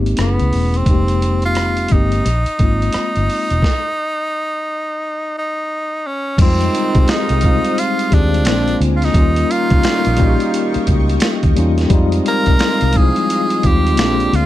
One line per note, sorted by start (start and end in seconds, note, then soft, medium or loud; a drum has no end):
0.00 0.13 G#1 medium
0.00 0.17 G#3 medium
0.00 0.18 A#3 medium
0.00 0.19 C4 medium
0.00 0.19 D#4 medium
0.00 0.20 G4 medium
0.06 closed hi-hat soft
0.17 0.37 F#1 medium
0.17 0.80 A3 medium
0.17 0.81 B3 medium
0.17 0.78 B3 medium
0.17 0.82 C#4 medium
0.17 0.82 E4 medium
0.17 cross-stick medium
0.17 closed hi-hat medium
0.21 0.83 G#4 medium
0.39 0.51 C#2 medium
0.39 closed hi-hat soft
0.53 0.82 E1 medium
0.53 open hi-hat soft
0.74 1.45 C4 medium
0.74 closed hi-hat soft
0.86 1.86 F1 loud
0.86 1.81 G#3 medium
0.86 1.82 A#3 medium
0.86 1.82 C4 medium
0.86 1.83 D#4 medium
0.86 kick medium
0.86 closed hi-hat medium
0.91 1.83 G4 loud
1.08 closed hi-hat soft
1.22 closed hi-hat medium
1.42 1.94 F4 loud
1.42 closed hi-hat soft
1.55 cross-stick medium
1.55 closed hi-hat medium
1.77 closed hi-hat soft
1.88 2.20 G1 medium
1.88 2.24 G#3 medium
1.88 2.25 A#3 medium
1.88 2.26 C4 medium
1.88 5.36 D#4 medium
1.88 kick medium
1.88 closed hi-hat medium
1.93 2.26 D#4 medium
1.93 2.27 G4 medium
2.12 closed hi-hat soft
2.25 2.44 A#1 medium
2.25 cross-stick soft
2.25 closed hi-hat medium
2.46 closed hi-hat soft
2.59 2.89 G#1 medium
2.59 3.54 G#3 medium
2.59 3.54 A#3 medium
2.59 3.55 C4 medium
2.59 3.55 D#4 medium
2.59 kick medium
2.59 closed hi-hat medium
2.63 3.56 F4 medium
2.82 closed hi-hat soft
2.93 muted fingered electric bass stroke soft
2.93 cross-stick medium
2.93 closed hi-hat medium
3.16 3.27 G1 medium
3.16 closed hi-hat soft
3.30 open hi-hat soft
3.50 3.61 E1 medium
3.50 closed hi-hat soft
3.62 kick medium
3.62 snare medium
5.38 6.08 D#4 medium
6.07 6.40 C#4 medium
6.38 6.67 F2 loud
6.38 8.08 C3 medium
6.38 8.07 D#3 medium
6.38 6.87 G3 medium
6.38 8.08 G#3 medium
6.38 6.87 G#3 medium
6.38 6.88 C4 medium
6.38 7.11 C4 loud
6.38 8.07 D#4 medium
6.38 6.89 D#4 medium
6.38 8.43 F4 medium
6.38 9.11 C5 medium
6.38 8.43 F5 medium
6.38 8.43 D#6 medium
6.38 kick loud
6.38 closed hi-hat medium
6.38 crash medium
6.42 6.89 F4 loud
6.61 closed hi-hat soft
6.75 closed hi-hat medium
6.95 7.06 C2 medium
6.95 7.38 G#3 medium
6.95 7.39 C4 medium
6.95 7.39 D#4 medium
6.95 7.37 G4 medium
6.95 kick loud
6.95 closed hi-hat soft
6.99 7.40 G#4 medium
7.08 7.81 D#4 loud
7.08 finger snap medium
7.08 muted fingered electric bass stroke soft
7.08 snare loud
7.08 closed hi-hat medium
7.29 7.59 C2 medium
7.29 closed hi-hat medium
7.41 8.05 G3 medium
7.41 8.05 G#3 medium
7.41 8.06 C4 medium
7.41 kick medium
7.41 closed hi-hat medium
7.45 8.07 D#4 medium
7.45 8.07 F4 medium
7.65 closed hi-hat soft
7.78 8.15 F4 loud
7.78 closed hi-hat medium
7.99 closed hi-hat medium
8.11 8.46 D#2 loud
8.11 8.47 D#3 medium
8.11 8.44 G#3 medium
8.11 8.46 C4 medium
8.11 8.79 D4 loud
8.11 8.45 G4 medium
8.11 kick medium
8.11 closed hi-hat medium
8.15 8.48 G#4 medium
8.34 closed hi-hat soft
8.45 8.75 A#1 loud
8.45 8.79 D3 medium
8.45 8.79 F3 medium
8.45 9.08 G#3 medium
8.45 9.09 A#3 medium
8.45 8.79 C4 medium
8.45 9.09 C4 medium
8.45 9.10 D4 medium
8.45 8.79 F4 medium
8.45 9.13 G#4 medium
8.45 9.13 A#5 medium
8.45 9.13 D6 medium
8.45 finger snap medium
8.45 snare loud
8.45 closed hi-hat medium
8.49 9.10 F4 medium
8.68 closed hi-hat soft
8.81 9.09 D2 loud
8.81 closed hi-hat medium
8.96 9.06 F4 medium
9.02 9.53 D#4 loud
9.02 snare soft
9.02 closed hi-hat soft
9.14 9.43 D#2 loud
9.14 11.52 A#2 medium
9.14 11.52 D#3 medium
9.14 9.63 G3 loud
9.14 11.52 G3 medium
9.14 9.64 A#3 medium
9.14 9.64 C#4 medium
9.14 11.52 D#4 medium
9.14 9.65 D#4 medium
9.14 11.88 F4 medium
9.14 13.93 D#5 medium
9.14 11.87 G5 medium
9.14 11.88 C#6 medium
9.14 kick loud
9.14 closed hi-hat medium
9.18 9.65 F4 loud
9.36 closed hi-hat medium
9.51 10.88 F4 loud
9.51 closed hi-hat medium
9.70 9.82 C#2 medium
9.70 10.13 G3 medium
9.70 10.14 A#3 medium
9.70 10.14 C#4 medium
9.70 10.15 D#4 medium
9.70 kick loud
9.70 closed hi-hat soft
9.75 10.16 F4 medium
9.83 finger snap medium
9.83 muted fingered electric bass stroke medium
9.83 snare loud
9.83 closed hi-hat medium
10.05 10.35 A#1 medium
10.05 closed hi-hat medium
10.17 11.44 G3 medium
10.17 11.44 A#3 medium
10.17 11.45 C#4 medium
10.17 11.45 D#4 medium
10.17 kick medium
10.17 closed hi-hat medium
10.21 10.28 F#4 medium
10.28 11.49 G4 medium
10.40 closed hi-hat soft
10.54 closed hi-hat medium
10.74 muted fingered electric bass stroke soft
10.74 closed hi-hat soft
10.87 11.16 C#2 loud
10.87 kick medium
10.87 closed hi-hat medium
11.09 closed hi-hat soft
11.20 finger snap medium
11.20 snare loud
11.20 closed hi-hat medium
11.43 11.54 D#2 medium
11.43 kick medium
11.43 closed hi-hat soft
11.55 11.85 E2 medium
11.55 11.87 G3 loud
11.55 11.88 A#3 medium
11.55 11.88 C#4 medium
11.55 11.89 D#4 medium
11.55 closed hi-hat medium
11.60 11.90 F4 loud
11.78 snare soft
11.78 closed hi-hat soft
11.90 12.19 F2 loud
11.90 13.59 C3 medium
11.90 13.59 F3 medium
11.90 12.39 G3 loud
11.90 13.59 G#3 medium
11.90 12.39 G#3 loud
11.90 12.40 C4 loud
11.90 12.41 D#4 loud
11.90 13.59 F4 medium
11.90 13.95 F4 medium
11.90 13.95 F5 medium
11.90 14.46 C6 medium
11.90 kick loud
11.90 closed hi-hat medium
11.94 12.41 F4 loud
12.12 closed hi-hat medium
12.26 12.99 A#4 loud
12.26 closed hi-hat medium
12.46 12.57 C2 medium
12.46 12.89 G3 medium
12.46 12.89 G#3 medium
12.46 12.90 C4 medium
12.46 12.91 D#4 medium
12.46 kick loud
12.46 closed hi-hat soft
12.50 12.91 F4 medium
12.59 finger snap medium
12.59 snare loud
12.59 closed hi-hat medium
12.81 13.11 C2 medium
12.81 closed hi-hat medium
12.93 13.56 F3 medium
12.93 13.57 G#3 medium
12.93 13.57 C4 medium
12.93 13.58 D#4 medium
12.93 kick medium
12.93 closed hi-hat medium
12.97 13.04 E4 medium
12.97 13.68 G#4 loud
13.04 13.62 F4 medium
13.16 closed hi-hat soft
13.30 closed hi-hat medium
13.50 closed hi-hat medium
13.62 13.99 D#2 medium
13.62 13.97 G3 medium
13.62 13.95 G#3 medium
13.62 13.97 C4 medium
13.62 13.99 D#4 medium
13.62 kick medium
13.62 closed hi-hat medium
13.66 13.99 F4 medium
13.66 14.37 G4 loud
13.87 closed hi-hat soft
13.96 14.27 A#1 loud
13.96 14.31 D3 medium
13.96 14.31 F3 medium
13.96 14.46 G#3 medium
13.96 14.31 G#3 medium
13.96 14.46 G#3 medium
13.96 14.46 A#3 medium
13.96 14.46 C4 medium
13.96 14.31 D4 medium
13.96 14.46 D4 medium
13.96 14.46 D5 medium
13.96 14.46 A#5 medium
13.96 finger snap medium
13.96 snare loud
13.96 closed hi-hat medium
14.01 14.46 F4 medium
14.20 closed hi-hat soft
14.33 14.46 D2 medium
14.33 14.46 F4 medium
14.33 closed hi-hat medium